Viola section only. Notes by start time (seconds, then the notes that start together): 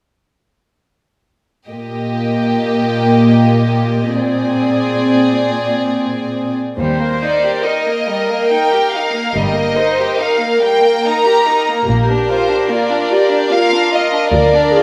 1.71 A#3
4.16 C4
6.79 C5
7.64 A#4
9.35 G4
9.77 C5
10.19 A#4
11.88 G4
12.69 F4
13.11 G4
13.51 F4
14.32 A#4
14.72 G#4